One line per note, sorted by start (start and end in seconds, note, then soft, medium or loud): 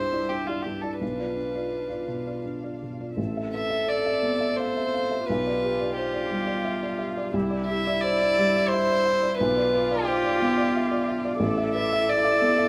0.00 0.23 G2 soft
0.00 0.30 D4 soft
0.00 3.18 D4 soft
0.00 0.13 E4 soft
0.00 1.02 G4 soft
0.00 0.31 C5 medium
0.00 0.13 D5 soft
0.00 1.01 E5 medium
0.13 0.28 E4 soft
0.13 0.29 D5 soft
0.29 0.58 D4 soft
0.29 0.48 G4 medium
0.46 0.64 E4 soft
0.46 0.64 F4 medium
0.46 0.64 D5 soft
0.62 0.95 G2 soft
0.62 0.83 G4 medium
0.81 1.00 E4 soft
0.81 0.98 A4 medium
0.81 1.00 D5 soft
0.99 1.19 B1 soft
0.99 3.17 F4 soft
0.99 2.40 B4 medium
0.99 3.18 F5 soft
1.19 1.35 F4 soft
1.19 1.35 D5 soft
1.36 1.65 D4 soft
1.55 1.87 F4 soft
1.55 1.87 D5 soft
1.90 2.06 F4 soft
1.90 2.06 D5 soft
2.07 2.37 B2 soft
2.27 2.43 F4 soft
2.27 2.43 D5 soft
2.45 2.74 D4 soft
2.64 2.80 F4 soft
2.64 2.80 D5 soft
2.82 3.11 B2 soft
3.00 3.16 F4 soft
3.00 3.17 D5 soft
3.16 5.22 A1 medium
3.16 5.22 C4 soft
3.16 5.22 A4 soft
3.16 5.23 A4 medium
3.16 5.22 E5 soft
3.37 3.64 E5 soft
3.54 3.82 B4 soft
3.54 3.90 E5 medium
3.70 3.98 E5 soft
3.88 4.05 D5 soft
3.88 4.58 D5 medium
4.06 4.34 E5 soft
4.23 4.51 B3 soft
4.40 4.68 E5 soft
4.56 5.28 C5 medium
4.56 4.76 F5 soft
4.77 5.04 E5 soft
4.94 5.10 F5 soft
5.11 5.28 E5 soft
5.26 7.31 B1 medium
5.26 11.42 D4 soft
5.26 7.36 F4 medium
5.26 9.38 G4 soft
5.26 5.95 B4 medium
5.26 7.34 F5 soft
5.47 5.73 D5 soft
5.64 5.90 G4 soft
5.81 6.08 D5 medium
5.96 6.97 G4 medium
5.96 6.14 C5 soft
6.14 6.41 D5 soft
6.31 6.58 G3 soft
6.47 6.75 D5 soft
6.65 6.82 E5 soft
6.83 7.10 D5 soft
6.99 7.16 E5 soft
7.17 7.34 D5 medium
7.33 9.33 C2 medium
7.33 9.38 E4 medium
7.33 9.37 E5 medium
7.50 7.78 D5 medium
7.66 7.96 G4 medium
7.66 8.02 E5 medium
7.87 8.13 D5 medium
8.00 8.20 C5 soft
8.00 8.70 D5 medium
8.22 8.48 D5 medium
8.38 8.64 G3 medium
8.56 8.82 D5 medium
8.68 9.37 C5 loud
8.74 8.89 E5 soft
8.89 9.15 D5 medium
9.23 9.38 D5 medium
9.37 11.39 B1 medium
9.37 11.39 F4 medium
9.37 10.06 B4 medium
9.37 12.69 D5 medium
9.37 11.42 F5 medium
9.57 9.83 D5 medium
9.75 10.00 B4 medium
9.91 10.17 D5 medium
10.05 11.07 G4 medium
10.05 10.24 C5 soft
10.24 10.51 D5 medium
10.42 10.68 B3 medium
10.57 10.84 D5 medium
10.76 10.92 E5 medium
10.91 11.18 D5 medium
11.08 11.25 E5 soft
11.25 11.42 D5 medium
11.39 12.69 A1 medium
11.39 12.69 E4 medium
11.39 12.69 A4 medium
11.39 12.69 E5 medium
11.58 11.85 E5 medium
11.74 12.02 B4 medium
11.74 12.11 E5 loud
11.93 12.20 E5 medium
12.08 12.26 D5 soft
12.08 12.69 D5 loud
12.24 12.53 E5 medium
12.42 12.69 B3 medium
12.58 12.69 E5 medium